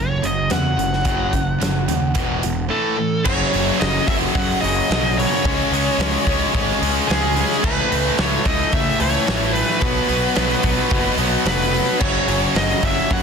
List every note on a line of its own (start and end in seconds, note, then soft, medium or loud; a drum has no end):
0.00 0.21 F#1 medium
0.00 0.20 F#2 medium
0.00 0.20 C#3 medium
0.00 0.25 C#5 medium
0.22 0.49 F#1 medium
0.22 0.48 F#2 medium
0.22 0.48 C#3 medium
0.22 0.52 D#5 medium
0.22 closed hi-hat medium
0.50 0.76 E2 medium
0.50 0.75 F#2 medium
0.50 0.76 C#3 medium
0.50 2.67 F#5 medium
0.50 snare medium
0.50 closed hi-hat medium
0.78 1.03 F#1 medium
0.78 1.03 F#2 medium
0.78 1.03 C#3 medium
0.78 closed hi-hat medium
0.93 snare soft
1.05 1.57 F#1 medium
1.05 1.32 F#2 medium
1.05 1.32 C#3 medium
1.05 1.32 F#3 medium
1.05 kick loud
1.05 closed hi-hat medium
1.33 1.58 F#2 medium
1.33 1.59 C#3 medium
1.33 kick medium
1.33 closed hi-hat medium
1.60 1.86 F#1 medium
1.60 1.86 F#2 medium
1.60 1.86 C#3 medium
1.60 snare medium
1.60 closed hi-hat medium
1.88 2.13 D#2 medium
1.88 2.13 F#2 medium
1.88 2.14 C#3 medium
1.88 closed hi-hat medium
2.15 2.41 E1 medium
2.15 2.42 E2 medium
2.15 2.42 B2 medium
2.15 2.42 E3 medium
2.15 kick loud
2.15 closed hi-hat medium
2.43 2.69 E1 medium
2.43 2.68 E2 medium
2.43 2.68 B2 medium
2.43 closed hi-hat medium
2.70 2.96 A2 medium
2.70 2.97 E3 medium
2.70 2.97 A3 medium
2.70 3.27 A4 medium
2.98 3.23 A2 medium
2.98 3.23 E3 medium
3.25 3.43 F#1 medium
3.25 3.49 F#2 medium
3.25 3.50 C#3 loud
3.25 3.51 F#3 loud
3.25 5.44 F#3 medium
3.25 7.61 C#4 medium
3.25 3.82 C#5 loud
3.25 kick loud
3.25 crash loud
3.29 7.61 G#4 medium
3.50 3.70 F#1 medium
3.50 3.78 F#2 medium
3.50 3.79 C#3 medium
3.50 3.80 F#3 medium
3.50 open hi-hat medium
3.79 3.98 F#1 medium
3.79 4.06 F#2 loud
3.79 4.07 C#3 loud
3.79 4.08 F#3 loud
3.79 4.07 D#5 loud
3.79 snare loud
3.79 open hi-hat medium
4.08 4.25 F#1 medium
4.08 4.33 F#2 medium
4.08 4.34 C#3 medium
4.08 4.34 F#3 medium
4.08 4.15 E5 medium
4.08 kick medium
4.08 open hi-hat medium
4.34 4.62 F#2 loud
4.34 4.52 F#2 medium
4.34 4.62 C#3 loud
4.34 4.63 F#3 loud
4.34 4.61 F#5 loud
4.34 kick loud
4.34 open hi-hat medium
4.61 4.80 F#1 medium
4.61 4.88 F#2 medium
4.61 4.89 C#3 medium
4.61 4.90 F#3 medium
4.61 5.18 D#5 loud
4.61 open hi-hat medium
4.89 5.24 B1 medium
4.89 5.17 F#2 medium
4.89 5.18 C#3 loud
4.89 5.19 F#3 loud
4.89 snare loud
4.89 open hi-hat medium
5.18 5.44 F#2 medium
5.18 5.44 C#3 medium
5.18 5.44 F#3 loud
5.18 6.78 C#5 medium
5.18 open hi-hat medium
5.45 5.61 C#2 medium
5.45 5.71 C#3 loud
5.45 5.72 G#3 medium
5.45 5.73 C#4 loud
5.45 7.62 D#5 medium
5.45 kick loud
5.45 open hi-hat medium
5.71 5.88 C#2 loud
5.71 5.99 C#3 medium
5.71 5.99 G#3 medium
5.71 6.00 C#4 loud
5.71 open hi-hat medium
5.98 6.15 C#2 loud
5.98 6.25 C#3 medium
5.98 6.25 G#3 loud
5.98 6.27 C#4 loud
5.98 snare loud
5.98 open hi-hat medium
6.26 6.43 C#2 medium
6.26 6.52 C#3 medium
6.26 6.52 G#3 medium
6.26 6.54 C#4 loud
6.26 kick medium
6.26 open hi-hat medium
6.30 7.63 C#3 medium
6.53 6.71 G#1 medium
6.53 6.80 C#3 loud
6.53 6.81 G#3 loud
6.53 6.81 C#4 loud
6.53 kick loud
6.53 open hi-hat medium
6.81 6.98 C#2 medium
6.81 7.07 C#3 loud
6.81 7.08 G#3 loud
6.81 7.09 C#4 loud
6.81 open hi-hat medium
7.08 7.43 C#2 medium
7.08 7.33 C#3 medium
7.08 7.34 G#3 medium
7.08 7.35 C#4 loud
7.08 7.65 G#4 medium
7.08 snare loud
7.08 open hi-hat medium
7.34 7.61 C#3 medium
7.34 7.62 G#3 medium
7.34 7.62 C#4 loud
7.34 open hi-hat medium
7.52 snare soft
7.62 7.80 C#2 loud
7.62 7.89 A2 medium
7.62 7.90 E3 loud
7.62 9.80 A3 medium
7.62 7.90 A3 loud
7.62 9.80 E4 medium
7.62 9.80 B4 medium
7.62 8.15 B4 loud
7.62 kick loud
7.62 crash loud
7.90 8.09 C#2 medium
7.90 8.16 A2 medium
7.90 8.16 E3 loud
7.90 8.17 A3 loud
7.90 open hi-hat medium
8.17 8.36 C#2 loud
8.17 8.44 A2 loud
8.17 8.45 E3 loud
8.17 8.46 A3 loud
8.17 8.48 C#5 loud
8.17 snare loud
8.17 open hi-hat medium
8.45 8.62 C#2 medium
8.45 8.71 A2 medium
8.45 8.72 E3 loud
8.45 8.72 A3 medium
8.45 8.72 D#5 loud
8.45 kick medium
8.45 open hi-hat medium
8.72 8.98 A2 loud
8.72 8.90 C#3 medium
8.72 8.98 E3 loud
8.72 8.99 A3 loud
8.72 8.99 E5 loud
8.72 kick loud
8.72 open hi-hat medium
9.00 9.17 C#2 medium
9.00 9.25 A2 medium
9.00 9.27 E3 loud
9.00 9.27 A3 loud
9.00 9.53 C#5 loud
9.00 open hi-hat medium
9.26 9.62 A1 medium
9.26 9.53 A2 medium
9.26 9.54 E3 medium
9.26 9.55 A3 medium
9.26 snare loud
9.26 open hi-hat medium
9.54 9.81 A2 medium
9.54 9.81 E3 medium
9.54 9.82 A3 loud
9.54 11.15 B4 medium
9.54 open hi-hat medium
9.69 snare soft
9.81 9.99 B1 medium
9.81 10.07 B2 loud
9.81 10.09 F#3 loud
9.81 11.99 B3 medium
9.81 10.09 B3 loud
9.81 12.00 F#4 medium
9.81 11.99 C#5 medium
9.81 kick loud
9.81 open hi-hat medium
10.08 10.26 B1 medium
10.08 10.34 B2 medium
10.08 10.36 F#3 medium
10.08 10.36 B3 loud
10.08 open hi-hat medium
10.35 10.54 B1 medium
10.35 10.62 B2 medium
10.35 10.63 F#3 loud
10.35 10.63 B3 loud
10.35 snare loud
10.35 open hi-hat medium
10.63 10.81 B1 medium
10.63 10.90 B2 medium
10.63 10.92 F#3 medium
10.63 10.92 B3 medium
10.63 kick medium
10.63 open hi-hat medium
10.90 11.08 F#1 loud
10.90 11.18 B2 loud
10.90 11.19 F#3 loud
10.90 11.20 B3 loud
10.90 kick loud
10.90 open hi-hat medium
11.17 11.35 B1 medium
11.17 11.45 B2 medium
11.17 11.46 F#3 medium
11.17 11.47 B3 medium
11.17 open hi-hat medium
11.45 11.79 F1 medium
11.45 11.72 B2 medium
11.45 11.73 F#3 medium
11.45 11.74 B3 loud
11.45 12.00 B4 medium
11.45 snare loud
11.45 open hi-hat medium
11.74 12.00 B2 medium
11.74 12.00 F#3 medium
11.74 12.01 B3 loud
11.74 open hi-hat medium
12.00 12.19 F#1 loud
12.00 12.27 F#2 medium
12.00 12.28 C#3 loud
12.00 12.28 F#3 medium
12.00 13.22 F#3 medium
12.00 13.22 C#4 medium
12.00 13.22 G#4 medium
12.00 12.52 C#5 medium
12.00 kick loud
12.00 crash loud
12.28 12.45 F#1 medium
12.28 12.55 F#2 medium
12.28 12.56 C#3 loud
12.28 12.57 F#3 medium
12.28 open hi-hat medium
12.55 12.72 F#1 medium
12.55 12.83 F#2 loud
12.55 12.83 C#3 loud
12.55 12.84 F#3 loud
12.55 12.85 D#5 loud
12.55 snare loud
12.55 open hi-hat medium
12.81 13.00 F#1 medium
12.81 13.10 F#2 medium
12.81 13.11 C#3 medium
12.81 13.22 F#3 medium
12.81 kick medium
12.81 open hi-hat medium
12.85 13.12 F#3 medium
12.85 13.13 E5 medium
13.11 13.22 F#2 loud
13.11 13.22 C#3 loud
13.11 13.22 F#3 loud
13.11 13.22 F#5 loud
13.11 kick loud
13.11 open hi-hat medium